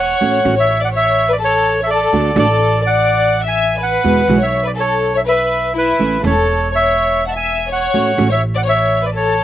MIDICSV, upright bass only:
0, 0, Header, 1, 2, 480
1, 0, Start_track
1, 0, Tempo, 480384
1, 207, Time_signature, 4, 2, 24, 8
1, 4524, Tempo, 487013
1, 9364, End_track
2, 0, Start_track
2, 0, Title_t, "Upright bass"
2, 0, Program_c, 0, 32
2, 0, Note_on_c, 0, 28, 86
2, 121, Note_off_c, 0, 28, 0
2, 211, Note_on_c, 0, 33, 57
2, 414, Note_off_c, 0, 33, 0
2, 451, Note_on_c, 0, 33, 89
2, 2044, Note_off_c, 0, 33, 0
2, 2122, Note_on_c, 0, 38, 58
2, 2325, Note_off_c, 0, 38, 0
2, 2360, Note_on_c, 0, 33, 101
2, 3957, Note_off_c, 0, 33, 0
2, 4041, Note_on_c, 0, 40, 57
2, 4243, Note_off_c, 0, 40, 0
2, 4274, Note_on_c, 0, 35, 89
2, 5882, Note_off_c, 0, 35, 0
2, 5972, Note_on_c, 0, 33, 55
2, 6172, Note_off_c, 0, 33, 0
2, 6210, Note_on_c, 0, 28, 93
2, 7802, Note_off_c, 0, 28, 0
2, 7891, Note_on_c, 0, 33, 59
2, 8089, Note_off_c, 0, 33, 0
2, 8126, Note_on_c, 0, 33, 94
2, 9364, Note_off_c, 0, 33, 0
2, 9364, End_track
0, 0, End_of_file